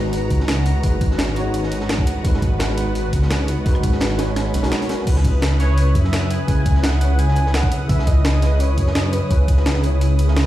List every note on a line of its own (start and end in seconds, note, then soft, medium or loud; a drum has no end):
0.00 0.29 G#1 loud
0.00 0.82 G#3 medium
0.00 5.03 B3 medium
0.00 0.83 D#4 medium
0.00 0.84 F#4 medium
0.00 5.03 F#4 medium
0.00 0.85 B4 loud
0.00 2.21 A#5 medium
0.13 closed hi-hat medium
0.30 0.74 C#2 medium
0.30 kick medium
0.30 closed hi-hat medium
0.40 snare soft
0.48 snare loud
0.48 closed hi-hat medium
0.48 closed hi-hat loud
0.66 closed hi-hat medium
0.82 1.09 G#1 loud
0.82 0.89 G#3 medium
0.82 0.90 D#4 medium
0.82 0.90 F#4 medium
0.82 0.91 B4 loud
0.82 kick loud
0.82 closed hi-hat medium
1.01 kick loud
1.01 closed hi-hat loud
1.01 closed hi-hat medium
1.10 2.06 G#1 medium
1.10 snare soft
1.18 snare loud
1.18 closed hi-hat medium
1.28 cross-stick soft
1.28 snare soft
1.34 2.21 G#3 medium
1.34 2.22 D#4 medium
1.34 2.23 F#4 medium
1.34 closed hi-hat loud
1.34 closed hi-hat medium
1.39 2.24 C#5 medium
1.54 closed hi-hat medium
1.63 snare soft
1.72 closed hi-hat medium
1.81 snare medium
1.89 snare loud
1.89 closed hi-hat medium
1.99 kick loud
2.07 closed hi-hat medium
2.22 3.12 G#1 loud
2.22 2.74 G#3 medium
2.22 2.75 D#4 medium
2.22 2.76 F#4 medium
2.22 10.46 B4 medium
2.22 kick loud
2.22 closed hi-hat loud
2.22 closed hi-hat medium
2.27 2.77 B4 loud
2.34 snare medium
2.42 kick loud
2.42 closed hi-hat medium
2.60 snare loud
2.60 closed hi-hat medium
2.75 3.63 G#3 medium
2.75 3.63 D#4 medium
2.75 3.64 F#4 medium
2.75 closed hi-hat medium
2.80 3.65 B4 medium
2.95 closed hi-hat medium
3.13 3.56 C#2 medium
3.13 kick medium
3.13 closed hi-hat medium
3.22 snare medium
3.31 snare loud
3.31 closed hi-hat medium
3.48 closed hi-hat medium
3.65 3.91 G#1 loud
3.65 3.72 G#3 medium
3.65 3.72 D#4 medium
3.65 3.73 F#4 medium
3.65 3.73 B4 loud
3.65 kick loud
3.65 closed hi-hat medium
3.75 cross-stick soft
3.83 kick loud
3.83 closed hi-hat medium
3.83 closed hi-hat loud
3.92 4.54 G#1 medium
3.92 snare soft
4.01 snare loud
4.01 closed hi-hat medium
4.10 cross-stick soft
4.10 snare soft
4.16 4.60 G#3 medium
4.16 4.61 D#4 medium
4.16 4.62 F#4 medium
4.16 snare medium
4.16 closed hi-hat loud
4.16 closed hi-hat medium
4.21 4.63 C#5 medium
4.36 cross-stick medium
4.36 snare loud
4.36 closed hi-hat medium
4.36 swell medium
4.54 4.72 B1 loud
4.54 snare soft
4.54 closed hi-hat medium
4.54 closed hi-hat loud
4.62 4.72 G#3 medium
4.62 4.73 D#4 medium
4.62 4.73 F#4 medium
4.62 4.73 A#4 loud
4.62 snare loud
4.62 closed hi-hat medium
4.72 snare loud
4.72 closed hi-hat medium
4.81 snare medium
4.81 closed hi-hat medium
4.89 snare loud
4.89 closed hi-hat loud
4.89 closed hi-hat medium
5.05 5.94 C#2 loud
5.05 5.56 C#3 medium
5.05 5.58 C#4 medium
5.05 10.46 E4 medium
5.05 5.58 E4 medium
5.05 10.46 D#6 medium
5.05 kick loud
5.05 closed hi-hat medium
5.05 crash medium
5.09 5.59 B4 medium
5.16 snare medium
5.24 kick loud
5.24 closed hi-hat medium
5.24 closed hi-hat loud
5.42 snare loud
5.42 closed hi-hat medium
5.58 6.45 C#3 medium
5.58 6.46 C#4 medium
5.58 6.47 E4 medium
5.58 5.96 C#5 loud
5.58 snare medium
5.58 closed hi-hat medium
5.62 6.47 B4 medium
5.78 closed hi-hat medium
5.95 6.38 F#2 loud
5.95 6.32 E5 loud
5.95 kick medium
5.95 closed hi-hat medium
5.95 closed hi-hat loud
6.04 snare medium
6.13 snare loud
6.13 closed hi-hat medium
6.30 6.85 G#5 loud
6.30 closed hi-hat loud
6.30 closed hi-hat medium
6.47 6.74 C#2 loud
6.47 6.54 C#3 loud
6.47 6.54 C#4 medium
6.47 6.55 E4 medium
6.47 6.55 B4 loud
6.47 kick loud
6.47 closed hi-hat medium
6.66 kick loud
6.66 closed hi-hat medium
6.75 7.70 C#2 medium
6.75 snare soft
6.83 7.20 F#5 loud
6.83 snare loud
6.83 closed hi-hat medium
6.93 cross-stick soft
6.93 snare soft
6.99 7.86 C#3 medium
6.99 7.87 C#4 medium
6.99 7.88 E4 medium
6.99 closed hi-hat medium
7.04 7.89 C#5 medium
7.18 7.55 G#5 loud
7.18 closed hi-hat medium
7.29 snare soft
7.36 closed hi-hat medium
7.47 snare medium
7.54 7.88 F#5 loud
7.54 snare loud
7.54 closed hi-hat medium
7.63 kick loud
7.72 closed hi-hat loud
7.72 closed hi-hat medium
7.87 8.76 C#2 loud
7.87 8.39 C#3 medium
7.87 8.40 C#4 medium
7.87 8.41 E4 medium
7.87 8.08 E5 loud
7.87 kick loud
7.87 closed hi-hat medium
7.92 8.42 B4 loud
7.99 snare medium
8.07 8.61 D#5 loud
8.07 kick loud
8.07 closed hi-hat medium
8.25 snare loud
8.25 closed hi-hat medium
8.40 9.27 C#3 medium
8.40 9.28 C#4 medium
8.40 9.29 E4 medium
8.40 snare medium
8.40 closed hi-hat medium
8.45 9.30 B4 medium
8.60 8.96 C#5 medium
8.60 closed hi-hat medium
8.60 closed hi-hat loud
8.78 9.21 F#2 loud
8.78 kick medium
8.78 closed hi-hat medium
8.87 snare medium
8.94 9.05 D#5 medium
8.94 snare loud
8.94 closed hi-hat medium
9.03 9.14 C#5 medium
9.12 9.23 B4 medium
9.12 closed hi-hat medium
9.21 9.30 C#5 medium
9.29 9.56 C#2 loud
9.29 9.36 C#3 loud
9.29 9.37 C#4 medium
9.29 9.37 E4 medium
9.29 9.38 B4 loud
9.29 kick loud
9.29 closed hi-hat medium
9.48 kick loud
9.48 closed hi-hat medium
9.57 10.18 C#2 medium
9.57 snare soft
9.66 snare loud
9.66 closed hi-hat medium
9.75 cross-stick soft
9.75 snare soft
9.81 10.25 C#3 medium
9.81 10.26 C#4 medium
9.81 10.27 E4 medium
9.81 closed hi-hat medium
9.86 10.27 C#5 medium
10.01 closed hi-hat medium
10.19 10.46 C#2 loud
10.19 closed hi-hat medium
10.27 10.37 C#3 medium
10.27 10.37 C#4 medium
10.27 10.38 E4 medium
10.27 10.38 A#4 loud
10.27 snare medium
10.37 snare loud
10.37 closed hi-hat medium